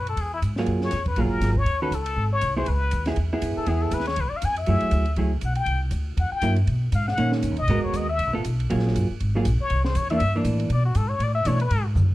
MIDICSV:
0, 0, Header, 1, 6, 480
1, 0, Start_track
1, 0, Tempo, 250836
1, 1282, Time_signature, 4, 2, 24, 8
1, 23245, End_track
2, 0, Start_track
2, 0, Title_t, "Muted trumpet"
2, 0, Program_c, 0, 59
2, 176, Note_on_c, 0, 69, 78
2, 397, Note_on_c, 0, 68, 75
2, 426, Note_off_c, 0, 69, 0
2, 636, Note_off_c, 0, 68, 0
2, 644, Note_on_c, 0, 64, 81
2, 754, Note_off_c, 0, 64, 0
2, 1599, Note_on_c, 0, 73, 84
2, 2023, Note_off_c, 0, 73, 0
2, 2062, Note_on_c, 0, 71, 84
2, 2309, Note_on_c, 0, 70, 83
2, 2337, Note_off_c, 0, 71, 0
2, 3018, Note_on_c, 0, 73, 96
2, 3047, Note_off_c, 0, 70, 0
2, 3474, Note_off_c, 0, 73, 0
2, 3486, Note_on_c, 0, 71, 89
2, 3722, Note_on_c, 0, 69, 85
2, 3751, Note_off_c, 0, 71, 0
2, 4433, Note_off_c, 0, 69, 0
2, 4445, Note_on_c, 0, 73, 107
2, 4879, Note_off_c, 0, 73, 0
2, 4924, Note_on_c, 0, 72, 88
2, 5122, Note_on_c, 0, 71, 84
2, 5151, Note_off_c, 0, 72, 0
2, 5866, Note_off_c, 0, 71, 0
2, 6843, Note_on_c, 0, 69, 84
2, 7042, Note_on_c, 0, 68, 79
2, 7071, Note_off_c, 0, 69, 0
2, 7302, Note_on_c, 0, 69, 90
2, 7331, Note_off_c, 0, 68, 0
2, 7536, Note_on_c, 0, 71, 86
2, 7564, Note_off_c, 0, 69, 0
2, 7781, Note_off_c, 0, 71, 0
2, 7792, Note_on_c, 0, 73, 105
2, 8048, Note_on_c, 0, 71, 85
2, 8076, Note_off_c, 0, 73, 0
2, 8212, Note_on_c, 0, 74, 92
2, 8241, Note_off_c, 0, 71, 0
2, 8355, Note_on_c, 0, 77, 94
2, 8383, Note_off_c, 0, 74, 0
2, 8512, Note_on_c, 0, 80, 111
2, 8540, Note_off_c, 0, 77, 0
2, 8747, Note_off_c, 0, 80, 0
2, 8759, Note_on_c, 0, 76, 98
2, 9833, Note_off_c, 0, 76, 0
2, 10435, Note_on_c, 0, 78, 75
2, 10630, Note_off_c, 0, 78, 0
2, 10641, Note_on_c, 0, 79, 101
2, 11094, Note_off_c, 0, 79, 0
2, 11861, Note_on_c, 0, 78, 85
2, 12078, Note_off_c, 0, 78, 0
2, 12089, Note_on_c, 0, 79, 106
2, 12541, Note_off_c, 0, 79, 0
2, 13304, Note_on_c, 0, 77, 90
2, 13543, Note_off_c, 0, 77, 0
2, 13551, Note_on_c, 0, 78, 93
2, 13995, Note_off_c, 0, 78, 0
2, 14517, Note_on_c, 0, 75, 94
2, 15000, Note_on_c, 0, 73, 88
2, 15029, Note_off_c, 0, 75, 0
2, 15237, Note_on_c, 0, 75, 85
2, 15266, Note_off_c, 0, 73, 0
2, 15477, Note_off_c, 0, 75, 0
2, 15488, Note_on_c, 0, 76, 100
2, 15929, Note_off_c, 0, 76, 0
2, 18387, Note_on_c, 0, 73, 89
2, 18822, Note_off_c, 0, 73, 0
2, 18859, Note_on_c, 0, 72, 94
2, 19074, Note_on_c, 0, 73, 88
2, 19103, Note_off_c, 0, 72, 0
2, 19323, Note_off_c, 0, 73, 0
2, 19335, Note_on_c, 0, 76, 102
2, 19776, Note_off_c, 0, 76, 0
2, 20534, Note_on_c, 0, 74, 86
2, 20753, Note_off_c, 0, 74, 0
2, 20765, Note_on_c, 0, 66, 78
2, 20982, Note_on_c, 0, 69, 88
2, 21011, Note_off_c, 0, 66, 0
2, 21213, Note_on_c, 0, 73, 93
2, 21242, Note_off_c, 0, 69, 0
2, 21495, Note_on_c, 0, 74, 93
2, 21524, Note_off_c, 0, 73, 0
2, 21699, Note_off_c, 0, 74, 0
2, 21711, Note_on_c, 0, 76, 115
2, 21952, Note_on_c, 0, 73, 100
2, 21981, Note_off_c, 0, 76, 0
2, 22216, Note_off_c, 0, 73, 0
2, 22226, Note_on_c, 0, 71, 93
2, 22662, Note_off_c, 0, 71, 0
2, 23245, End_track
3, 0, Start_track
3, 0, Title_t, "Hollow-body jazz guitar"
3, 0, Program_c, 1, 26
3, 1117, Note_on_c, 1, 54, 67
3, 1123, Note_on_c, 1, 58, 65
3, 1135, Note_on_c, 1, 68, 68
3, 1138, Note_on_c, 1, 65, 66
3, 1739, Note_off_c, 1, 54, 0
3, 1742, Note_off_c, 1, 58, 0
3, 1748, Note_off_c, 1, 68, 0
3, 1749, Note_off_c, 1, 65, 0
3, 2255, Note_on_c, 1, 54, 56
3, 2260, Note_on_c, 1, 58, 56
3, 2280, Note_on_c, 1, 65, 59
3, 2285, Note_on_c, 1, 68, 56
3, 2943, Note_off_c, 1, 54, 0
3, 2946, Note_off_c, 1, 58, 0
3, 2956, Note_off_c, 1, 65, 0
3, 2958, Note_off_c, 1, 68, 0
3, 3484, Note_on_c, 1, 51, 54
3, 3485, Note_on_c, 1, 61, 57
3, 3491, Note_on_c, 1, 66, 57
3, 3497, Note_on_c, 1, 69, 71
3, 3659, Note_off_c, 1, 51, 0
3, 3659, Note_off_c, 1, 61, 0
3, 3662, Note_off_c, 1, 66, 0
3, 3666, Note_off_c, 1, 69, 0
3, 4908, Note_on_c, 1, 59, 59
3, 4920, Note_on_c, 1, 64, 66
3, 4934, Note_on_c, 1, 68, 73
3, 5088, Note_off_c, 1, 59, 0
3, 5094, Note_off_c, 1, 64, 0
3, 5101, Note_off_c, 1, 68, 0
3, 5878, Note_on_c, 1, 64, 64
3, 5883, Note_on_c, 1, 59, 63
3, 5893, Note_on_c, 1, 68, 75
3, 6051, Note_off_c, 1, 64, 0
3, 6053, Note_off_c, 1, 59, 0
3, 6058, Note_off_c, 1, 68, 0
3, 6368, Note_on_c, 1, 59, 69
3, 6372, Note_on_c, 1, 64, 76
3, 6385, Note_on_c, 1, 68, 75
3, 6993, Note_off_c, 1, 59, 0
3, 6995, Note_off_c, 1, 64, 0
3, 7002, Note_off_c, 1, 68, 0
3, 7025, Note_on_c, 1, 59, 69
3, 7036, Note_on_c, 1, 64, 71
3, 7064, Note_on_c, 1, 68, 70
3, 7720, Note_off_c, 1, 59, 0
3, 7725, Note_off_c, 1, 64, 0
3, 7740, Note_off_c, 1, 68, 0
3, 8939, Note_on_c, 1, 54, 59
3, 8961, Note_on_c, 1, 57, 68
3, 8975, Note_on_c, 1, 64, 63
3, 8977, Note_on_c, 1, 68, 65
3, 9638, Note_off_c, 1, 54, 0
3, 9649, Note_off_c, 1, 57, 0
3, 9655, Note_off_c, 1, 64, 0
3, 9657, Note_off_c, 1, 68, 0
3, 9900, Note_on_c, 1, 54, 51
3, 9915, Note_on_c, 1, 57, 53
3, 9922, Note_on_c, 1, 64, 57
3, 9925, Note_on_c, 1, 68, 59
3, 10146, Note_off_c, 1, 54, 0
3, 10153, Note_off_c, 1, 57, 0
3, 10157, Note_off_c, 1, 64, 0
3, 10159, Note_off_c, 1, 68, 0
3, 12297, Note_on_c, 1, 54, 50
3, 12302, Note_on_c, 1, 58, 59
3, 12315, Note_on_c, 1, 64, 62
3, 12548, Note_off_c, 1, 54, 0
3, 12551, Note_off_c, 1, 58, 0
3, 12557, Note_off_c, 1, 64, 0
3, 13737, Note_on_c, 1, 51, 56
3, 13744, Note_on_c, 1, 58, 68
3, 13772, Note_on_c, 1, 61, 64
3, 14446, Note_off_c, 1, 51, 0
3, 14449, Note_off_c, 1, 58, 0
3, 14463, Note_off_c, 1, 61, 0
3, 14721, Note_on_c, 1, 56, 72
3, 14727, Note_on_c, 1, 59, 71
3, 14742, Note_on_c, 1, 66, 79
3, 14750, Note_on_c, 1, 70, 78
3, 15420, Note_off_c, 1, 56, 0
3, 15423, Note_off_c, 1, 59, 0
3, 15431, Note_off_c, 1, 66, 0
3, 15434, Note_off_c, 1, 70, 0
3, 15946, Note_on_c, 1, 59, 65
3, 15964, Note_on_c, 1, 65, 60
3, 15973, Note_on_c, 1, 69, 74
3, 16135, Note_off_c, 1, 59, 0
3, 16144, Note_off_c, 1, 65, 0
3, 16148, Note_off_c, 1, 69, 0
3, 16645, Note_on_c, 1, 54, 65
3, 16654, Note_on_c, 1, 58, 68
3, 16664, Note_on_c, 1, 65, 63
3, 16668, Note_on_c, 1, 68, 65
3, 17346, Note_off_c, 1, 54, 0
3, 17350, Note_off_c, 1, 58, 0
3, 17355, Note_off_c, 1, 65, 0
3, 17357, Note_off_c, 1, 68, 0
3, 17898, Note_on_c, 1, 54, 55
3, 17914, Note_on_c, 1, 58, 58
3, 17917, Note_on_c, 1, 65, 61
3, 17924, Note_on_c, 1, 68, 62
3, 18074, Note_off_c, 1, 54, 0
3, 18082, Note_off_c, 1, 58, 0
3, 18083, Note_off_c, 1, 65, 0
3, 18087, Note_off_c, 1, 68, 0
3, 19345, Note_on_c, 1, 52, 70
3, 19366, Note_on_c, 1, 58, 74
3, 19373, Note_on_c, 1, 62, 72
3, 19519, Note_off_c, 1, 52, 0
3, 19529, Note_off_c, 1, 58, 0
3, 19533, Note_off_c, 1, 62, 0
3, 19818, Note_on_c, 1, 52, 63
3, 19818, Note_on_c, 1, 58, 66
3, 19841, Note_on_c, 1, 62, 76
3, 20456, Note_off_c, 1, 52, 0
3, 20456, Note_off_c, 1, 58, 0
3, 20467, Note_off_c, 1, 62, 0
3, 21934, Note_on_c, 1, 52, 57
3, 21949, Note_on_c, 1, 62, 65
3, 21954, Note_on_c, 1, 57, 55
3, 22179, Note_off_c, 1, 52, 0
3, 22187, Note_off_c, 1, 62, 0
3, 22189, Note_off_c, 1, 57, 0
3, 23245, End_track
4, 0, Start_track
4, 0, Title_t, "Upright bass"
4, 0, Program_c, 2, 32
4, 0, Note_on_c, 2, 42, 81
4, 303, Note_off_c, 2, 42, 0
4, 314, Note_on_c, 2, 40, 73
4, 784, Note_off_c, 2, 40, 0
4, 803, Note_on_c, 2, 44, 72
4, 1268, Note_off_c, 2, 44, 0
4, 1283, Note_on_c, 2, 42, 74
4, 1746, Note_off_c, 2, 42, 0
4, 1761, Note_on_c, 2, 41, 80
4, 2215, Note_off_c, 2, 41, 0
4, 2227, Note_on_c, 2, 34, 78
4, 2376, Note_off_c, 2, 34, 0
4, 2376, Note_on_c, 2, 30, 51
4, 2509, Note_off_c, 2, 30, 0
4, 2520, Note_on_c, 2, 29, 57
4, 2667, Note_off_c, 2, 29, 0
4, 2679, Note_on_c, 2, 32, 81
4, 3143, Note_off_c, 2, 32, 0
4, 3155, Note_on_c, 2, 39, 74
4, 3637, Note_off_c, 2, 39, 0
4, 3651, Note_on_c, 2, 37, 85
4, 4124, Note_off_c, 2, 37, 0
4, 4133, Note_on_c, 2, 32, 77
4, 4604, Note_off_c, 2, 32, 0
4, 4630, Note_on_c, 2, 36, 81
4, 5092, Note_off_c, 2, 36, 0
4, 5123, Note_on_c, 2, 37, 77
4, 5578, Note_off_c, 2, 37, 0
4, 5598, Note_on_c, 2, 39, 88
4, 6050, Note_off_c, 2, 39, 0
4, 6061, Note_on_c, 2, 40, 80
4, 6525, Note_off_c, 2, 40, 0
4, 6540, Note_on_c, 2, 42, 85
4, 6795, Note_off_c, 2, 42, 0
4, 7018, Note_on_c, 2, 40, 81
4, 7475, Note_off_c, 2, 40, 0
4, 7487, Note_on_c, 2, 39, 90
4, 7956, Note_off_c, 2, 39, 0
4, 7982, Note_on_c, 2, 37, 85
4, 8235, Note_off_c, 2, 37, 0
4, 8471, Note_on_c, 2, 41, 87
4, 8929, Note_off_c, 2, 41, 0
4, 8948, Note_on_c, 2, 42, 74
4, 9198, Note_off_c, 2, 42, 0
4, 9400, Note_on_c, 2, 38, 83
4, 9868, Note_off_c, 2, 38, 0
4, 9880, Note_on_c, 2, 37, 77
4, 10354, Note_off_c, 2, 37, 0
4, 10373, Note_on_c, 2, 35, 73
4, 10812, Note_off_c, 2, 35, 0
4, 10824, Note_on_c, 2, 36, 75
4, 11298, Note_off_c, 2, 36, 0
4, 11309, Note_on_c, 2, 38, 78
4, 11791, Note_off_c, 2, 38, 0
4, 11804, Note_on_c, 2, 40, 84
4, 12069, Note_off_c, 2, 40, 0
4, 12279, Note_on_c, 2, 43, 78
4, 12757, Note_off_c, 2, 43, 0
4, 12766, Note_on_c, 2, 47, 73
4, 13235, Note_off_c, 2, 47, 0
4, 13246, Note_on_c, 2, 44, 86
4, 13711, Note_off_c, 2, 44, 0
4, 13722, Note_on_c, 2, 46, 80
4, 14203, Note_off_c, 2, 46, 0
4, 14215, Note_on_c, 2, 42, 78
4, 14374, Note_off_c, 2, 42, 0
4, 14374, Note_on_c, 2, 39, 57
4, 14528, Note_off_c, 2, 39, 0
4, 14540, Note_on_c, 2, 35, 68
4, 14678, Note_off_c, 2, 35, 0
4, 14690, Note_on_c, 2, 44, 84
4, 14852, Note_on_c, 2, 42, 52
4, 14881, Note_off_c, 2, 44, 0
4, 15002, Note_off_c, 2, 42, 0
4, 15014, Note_on_c, 2, 39, 61
4, 15161, Note_off_c, 2, 39, 0
4, 15173, Note_on_c, 2, 39, 85
4, 15651, Note_off_c, 2, 39, 0
4, 15665, Note_on_c, 2, 37, 81
4, 15815, Note_off_c, 2, 37, 0
4, 15815, Note_on_c, 2, 35, 53
4, 15987, Note_off_c, 2, 35, 0
4, 15998, Note_on_c, 2, 33, 60
4, 16148, Note_off_c, 2, 33, 0
4, 16165, Note_on_c, 2, 35, 74
4, 16630, Note_off_c, 2, 35, 0
4, 16672, Note_on_c, 2, 34, 84
4, 17124, Note_off_c, 2, 34, 0
4, 17132, Note_on_c, 2, 31, 81
4, 17385, Note_off_c, 2, 31, 0
4, 17616, Note_on_c, 2, 32, 75
4, 18077, Note_off_c, 2, 32, 0
4, 18088, Note_on_c, 2, 34, 85
4, 18343, Note_off_c, 2, 34, 0
4, 18566, Note_on_c, 2, 36, 85
4, 19028, Note_off_c, 2, 36, 0
4, 19040, Note_on_c, 2, 40, 88
4, 19510, Note_off_c, 2, 40, 0
4, 19526, Note_on_c, 2, 43, 84
4, 19971, Note_off_c, 2, 43, 0
4, 19983, Note_on_c, 2, 45, 83
4, 20454, Note_off_c, 2, 45, 0
4, 20465, Note_on_c, 2, 47, 82
4, 20943, Note_off_c, 2, 47, 0
4, 20954, Note_on_c, 2, 44, 95
4, 21399, Note_off_c, 2, 44, 0
4, 21410, Note_on_c, 2, 45, 89
4, 21894, Note_off_c, 2, 45, 0
4, 21914, Note_on_c, 2, 47, 89
4, 22387, Note_off_c, 2, 47, 0
4, 22402, Note_on_c, 2, 44, 84
4, 22859, Note_off_c, 2, 44, 0
4, 22871, Note_on_c, 2, 42, 94
4, 23245, Note_off_c, 2, 42, 0
4, 23245, End_track
5, 0, Start_track
5, 0, Title_t, "Muted upright bass strokes"
5, 6827, Note_on_c, 9, 29, 41
5, 7018, Note_off_c, 9, 29, 0
5, 9227, Note_on_c, 9, 29, 33
5, 9418, Note_off_c, 9, 29, 0
5, 12085, Note_on_c, 9, 29, 39
5, 12276, Note_off_c, 9, 29, 0
5, 17402, Note_on_c, 9, 29, 38
5, 17593, Note_off_c, 9, 29, 0
5, 18386, Note_on_c, 9, 29, 39
5, 18577, Note_off_c, 9, 29, 0
5, 23245, End_track
6, 0, Start_track
6, 0, Title_t, "Drums"
6, 129, Note_on_c, 9, 51, 44
6, 321, Note_off_c, 9, 51, 0
6, 326, Note_on_c, 9, 51, 59
6, 518, Note_off_c, 9, 51, 0
6, 809, Note_on_c, 9, 44, 49
6, 809, Note_on_c, 9, 51, 61
6, 1000, Note_off_c, 9, 44, 0
6, 1000, Note_off_c, 9, 51, 0
6, 1074, Note_on_c, 9, 38, 42
6, 1266, Note_off_c, 9, 38, 0
6, 1269, Note_on_c, 9, 51, 49
6, 1461, Note_off_c, 9, 51, 0
6, 1549, Note_on_c, 9, 38, 35
6, 1737, Note_on_c, 9, 44, 54
6, 1737, Note_on_c, 9, 51, 62
6, 1741, Note_off_c, 9, 38, 0
6, 1745, Note_on_c, 9, 38, 36
6, 1929, Note_off_c, 9, 44, 0
6, 1929, Note_off_c, 9, 51, 0
6, 1936, Note_off_c, 9, 38, 0
6, 2022, Note_on_c, 9, 51, 43
6, 2029, Note_on_c, 9, 36, 51
6, 2213, Note_off_c, 9, 51, 0
6, 2220, Note_off_c, 9, 36, 0
6, 2221, Note_on_c, 9, 51, 60
6, 2412, Note_off_c, 9, 51, 0
6, 2705, Note_on_c, 9, 44, 50
6, 2705, Note_on_c, 9, 51, 67
6, 2713, Note_on_c, 9, 38, 36
6, 2896, Note_off_c, 9, 44, 0
6, 2896, Note_off_c, 9, 51, 0
6, 2904, Note_off_c, 9, 38, 0
6, 2983, Note_on_c, 9, 36, 47
6, 3174, Note_off_c, 9, 36, 0
6, 3178, Note_on_c, 9, 51, 53
6, 3370, Note_off_c, 9, 51, 0
6, 3674, Note_on_c, 9, 44, 58
6, 3674, Note_on_c, 9, 51, 64
6, 3865, Note_off_c, 9, 44, 0
6, 3865, Note_off_c, 9, 51, 0
6, 3938, Note_on_c, 9, 51, 65
6, 4129, Note_off_c, 9, 51, 0
6, 4616, Note_on_c, 9, 44, 57
6, 4616, Note_on_c, 9, 51, 70
6, 4808, Note_off_c, 9, 44, 0
6, 4808, Note_off_c, 9, 51, 0
6, 5091, Note_on_c, 9, 51, 61
6, 5283, Note_off_c, 9, 51, 0
6, 5571, Note_on_c, 9, 44, 59
6, 5571, Note_on_c, 9, 51, 65
6, 5763, Note_off_c, 9, 44, 0
6, 5763, Note_off_c, 9, 51, 0
6, 5847, Note_on_c, 9, 51, 46
6, 5854, Note_on_c, 9, 38, 43
6, 6038, Note_off_c, 9, 51, 0
6, 6046, Note_off_c, 9, 38, 0
6, 6047, Note_on_c, 9, 51, 63
6, 6238, Note_off_c, 9, 51, 0
6, 6537, Note_on_c, 9, 44, 55
6, 6537, Note_on_c, 9, 51, 76
6, 6729, Note_off_c, 9, 44, 0
6, 6729, Note_off_c, 9, 51, 0
6, 7010, Note_on_c, 9, 51, 56
6, 7201, Note_off_c, 9, 51, 0
6, 7488, Note_on_c, 9, 44, 60
6, 7488, Note_on_c, 9, 51, 67
6, 7654, Note_on_c, 9, 38, 29
6, 7679, Note_off_c, 9, 44, 0
6, 7679, Note_off_c, 9, 51, 0
6, 7759, Note_on_c, 9, 51, 45
6, 7809, Note_off_c, 9, 38, 0
6, 7809, Note_on_c, 9, 38, 46
6, 7950, Note_off_c, 9, 51, 0
6, 7962, Note_on_c, 9, 51, 65
6, 8001, Note_off_c, 9, 38, 0
6, 8154, Note_off_c, 9, 51, 0
6, 8451, Note_on_c, 9, 44, 67
6, 8451, Note_on_c, 9, 51, 77
6, 8643, Note_off_c, 9, 44, 0
6, 8643, Note_off_c, 9, 51, 0
6, 8732, Note_on_c, 9, 51, 47
6, 8921, Note_off_c, 9, 51, 0
6, 8921, Note_on_c, 9, 51, 57
6, 9112, Note_off_c, 9, 51, 0
6, 9193, Note_on_c, 9, 51, 45
6, 9384, Note_off_c, 9, 51, 0
6, 9397, Note_on_c, 9, 44, 52
6, 9397, Note_on_c, 9, 51, 58
6, 9588, Note_off_c, 9, 44, 0
6, 9588, Note_off_c, 9, 51, 0
6, 9671, Note_on_c, 9, 51, 41
6, 9863, Note_off_c, 9, 51, 0
6, 9879, Note_on_c, 9, 51, 54
6, 10070, Note_off_c, 9, 51, 0
6, 10356, Note_on_c, 9, 44, 49
6, 10356, Note_on_c, 9, 51, 63
6, 10547, Note_off_c, 9, 44, 0
6, 10547, Note_off_c, 9, 51, 0
6, 10627, Note_on_c, 9, 51, 44
6, 10818, Note_off_c, 9, 51, 0
6, 10834, Note_on_c, 9, 51, 52
6, 11025, Note_off_c, 9, 51, 0
6, 11304, Note_on_c, 9, 44, 63
6, 11304, Note_on_c, 9, 51, 64
6, 11496, Note_off_c, 9, 44, 0
6, 11496, Note_off_c, 9, 51, 0
6, 11813, Note_on_c, 9, 51, 61
6, 12005, Note_off_c, 9, 51, 0
6, 12277, Note_on_c, 9, 44, 50
6, 12277, Note_on_c, 9, 51, 66
6, 12468, Note_off_c, 9, 44, 0
6, 12468, Note_off_c, 9, 51, 0
6, 12560, Note_on_c, 9, 51, 42
6, 12751, Note_off_c, 9, 51, 0
6, 12768, Note_on_c, 9, 51, 57
6, 12960, Note_off_c, 9, 51, 0
6, 13244, Note_on_c, 9, 44, 60
6, 13244, Note_on_c, 9, 51, 62
6, 13435, Note_off_c, 9, 44, 0
6, 13435, Note_off_c, 9, 51, 0
6, 13549, Note_on_c, 9, 38, 35
6, 13731, Note_on_c, 9, 51, 56
6, 13740, Note_off_c, 9, 38, 0
6, 13922, Note_off_c, 9, 51, 0
6, 14005, Note_on_c, 9, 38, 62
6, 14197, Note_off_c, 9, 38, 0
6, 14208, Note_on_c, 9, 44, 60
6, 14208, Note_on_c, 9, 51, 69
6, 14400, Note_off_c, 9, 44, 0
6, 14400, Note_off_c, 9, 51, 0
6, 14476, Note_on_c, 9, 51, 43
6, 14668, Note_off_c, 9, 51, 0
6, 14690, Note_on_c, 9, 51, 60
6, 14881, Note_off_c, 9, 51, 0
6, 15185, Note_on_c, 9, 44, 58
6, 15185, Note_on_c, 9, 51, 65
6, 15377, Note_off_c, 9, 44, 0
6, 15377, Note_off_c, 9, 51, 0
6, 15669, Note_on_c, 9, 51, 57
6, 15861, Note_off_c, 9, 51, 0
6, 16159, Note_on_c, 9, 44, 60
6, 16159, Note_on_c, 9, 51, 71
6, 16350, Note_off_c, 9, 44, 0
6, 16350, Note_off_c, 9, 51, 0
6, 16454, Note_on_c, 9, 51, 44
6, 16645, Note_off_c, 9, 51, 0
6, 16653, Note_on_c, 9, 51, 58
6, 16822, Note_on_c, 9, 38, 31
6, 16845, Note_off_c, 9, 51, 0
6, 16981, Note_off_c, 9, 38, 0
6, 16981, Note_on_c, 9, 38, 41
6, 17138, Note_on_c, 9, 44, 61
6, 17138, Note_on_c, 9, 51, 73
6, 17172, Note_off_c, 9, 38, 0
6, 17330, Note_off_c, 9, 44, 0
6, 17330, Note_off_c, 9, 51, 0
6, 17611, Note_on_c, 9, 51, 54
6, 17802, Note_off_c, 9, 51, 0
6, 18083, Note_on_c, 9, 44, 60
6, 18083, Note_on_c, 9, 51, 75
6, 18275, Note_off_c, 9, 44, 0
6, 18275, Note_off_c, 9, 51, 0
6, 18557, Note_on_c, 9, 51, 62
6, 18749, Note_off_c, 9, 51, 0
6, 18840, Note_on_c, 9, 38, 63
6, 19031, Note_off_c, 9, 38, 0
6, 19039, Note_on_c, 9, 44, 57
6, 19039, Note_on_c, 9, 51, 67
6, 19230, Note_off_c, 9, 44, 0
6, 19230, Note_off_c, 9, 51, 0
6, 19323, Note_on_c, 9, 51, 46
6, 19515, Note_off_c, 9, 51, 0
6, 19518, Note_on_c, 9, 51, 63
6, 19710, Note_off_c, 9, 51, 0
6, 19989, Note_on_c, 9, 44, 56
6, 19989, Note_on_c, 9, 51, 71
6, 20181, Note_off_c, 9, 44, 0
6, 20181, Note_off_c, 9, 51, 0
6, 20275, Note_on_c, 9, 51, 45
6, 20466, Note_off_c, 9, 51, 0
6, 20471, Note_on_c, 9, 51, 62
6, 20662, Note_off_c, 9, 51, 0
6, 20948, Note_on_c, 9, 44, 63
6, 20948, Note_on_c, 9, 51, 67
6, 21140, Note_off_c, 9, 44, 0
6, 21140, Note_off_c, 9, 51, 0
6, 21434, Note_on_c, 9, 51, 57
6, 21625, Note_off_c, 9, 51, 0
6, 21913, Note_on_c, 9, 44, 64
6, 21913, Note_on_c, 9, 51, 77
6, 22104, Note_off_c, 9, 44, 0
6, 22104, Note_off_c, 9, 51, 0
6, 22192, Note_on_c, 9, 51, 46
6, 22383, Note_off_c, 9, 51, 0
6, 22399, Note_on_c, 9, 51, 62
6, 22591, Note_off_c, 9, 51, 0
6, 22887, Note_on_c, 9, 44, 52
6, 22895, Note_on_c, 9, 47, 47
6, 23079, Note_off_c, 9, 44, 0
6, 23086, Note_off_c, 9, 47, 0
6, 23245, End_track
0, 0, End_of_file